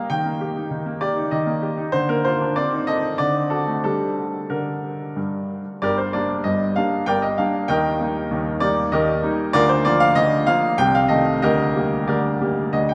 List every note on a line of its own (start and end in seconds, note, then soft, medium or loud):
0.10 0.69 D#3 soft
0.10 1.02 G5 medium
0.25 0.50 A#3 soft
0.41 0.65 G4 soft
0.56 0.80 D#4 soft
0.71 1.30 D#3 soft
0.86 1.11 A#3 soft
1.01 1.26 G4 soft
1.01 1.32 D5 medium
1.17 1.41 D#4 soft
1.31 1.91 D#3 soft
1.31 1.93 D#5 medium
1.47 1.71 A#3 soft
1.62 1.87 G4 soft
1.77 1.93 D#4 soft
1.92 2.53 D3 medium
1.92 2.08 C5 medium
2.09 2.34 A#3 soft
2.09 2.24 A#4 medium
2.25 2.49 F4 soft
2.25 2.55 C5 medium
2.41 2.56 D4 soft
2.56 3.01 C4 medium
2.56 2.87 D5 medium
2.73 2.97 D#4 soft
2.87 3.13 A4 soft
2.87 3.19 D#5 medium
3.02 3.18 C4 soft
3.18 3.83 D3 soft
3.18 3.51 D5 medium
3.35 3.61 C4 soft
3.50 3.77 F#4 soft
3.50 3.82 A4 medium
3.67 3.84 A3 soft
3.84 4.31 G3 soft
3.84 4.38 D4 soft
3.84 4.38 G4 soft
3.84 4.51 A4 medium
4.50 4.97 D3 soft
4.50 5.16 A#4 soft
5.16 5.62 G2 soft
5.82 6.13 G1 soft
5.82 6.13 G2 soft
5.82 5.97 G4 medium
5.82 5.98 A#4 medium
5.82 5.98 D5 medium
5.98 6.14 C5 medium
6.13 6.42 G3 soft
6.13 6.42 A#3 soft
6.13 6.42 D4 soft
6.13 6.45 D5 medium
6.44 6.75 G1 soft
6.44 6.75 G2 soft
6.44 6.75 D#5 medium
6.76 7.04 G3 soft
6.76 7.04 A#3 soft
6.76 7.04 D4 soft
6.76 7.07 F5 medium
7.06 7.37 G1 soft
7.06 7.37 G2 soft
7.06 7.21 A#4 medium
7.06 7.21 D5 medium
7.06 7.22 G5 medium
7.22 7.37 D#5 medium
7.38 7.66 G3 soft
7.38 7.66 A#3 soft
7.38 7.66 D4 soft
7.38 7.68 F5 medium
7.68 7.98 D#2 soft
7.68 7.98 D#3 soft
7.68 8.57 A#4 medium
7.68 8.57 D#5 medium
7.68 8.61 G5 medium
8.00 8.27 G3 soft
8.00 8.28 A#3 soft
8.00 8.28 D#4 soft
8.31 8.60 D#2 soft
8.31 8.60 D#3 soft
8.60 8.89 G3 soft
8.60 8.89 A#3 soft
8.60 8.89 D#4 soft
8.60 8.91 D5 medium
8.92 9.22 D#2 medium
8.92 9.22 D#3 soft
8.92 9.50 G4 medium
8.92 9.50 A#4 medium
8.92 9.53 D#5 medium
9.23 9.50 G3 soft
9.23 9.50 A#3 soft
9.23 9.50 D#4 soft
9.53 9.83 D2 medium
9.53 9.83 D3 medium
9.53 9.68 F4 medium
9.53 9.68 A#4 medium
9.53 9.68 D5 loud
9.69 9.84 C5 medium
9.85 10.13 F3 soft
9.85 10.13 A#3 soft
9.85 10.13 F4 soft
9.85 10.00 D5 medium
10.00 10.15 F5 medium
10.15 10.46 D2 medium
10.15 10.46 D3 medium
10.15 10.47 D#5 medium
10.47 10.75 F3 soft
10.47 10.76 A#3 soft
10.47 10.76 F4 medium
10.47 10.78 F5 medium
10.78 11.09 C2 medium
10.78 11.09 C3 medium
10.78 10.94 G5 medium
10.95 11.10 F5 medium
11.08 11.39 D#3 soft
11.08 11.39 A3 soft
11.08 11.39 A4 soft
11.08 11.41 D#5 medium
11.42 11.75 D2 soft
11.42 11.74 D3 medium
11.42 11.75 G4 medium
11.42 12.04 A#4 medium
11.42 12.08 D#5 medium
11.75 12.05 G3 soft
11.75 12.05 A#3 soft
11.75 12.05 G4 soft
12.08 12.40 D2 soft
12.08 12.40 D3 soft
12.08 12.40 G4 soft
12.08 12.70 A#4 soft
12.08 12.73 D5 medium
12.41 12.70 G3 soft
12.41 12.70 A#3 soft
12.41 12.70 G4 soft
12.73 12.94 D2 soft
12.73 12.94 D3 soft
12.73 12.89 D#5 medium
12.89 12.94 G5 medium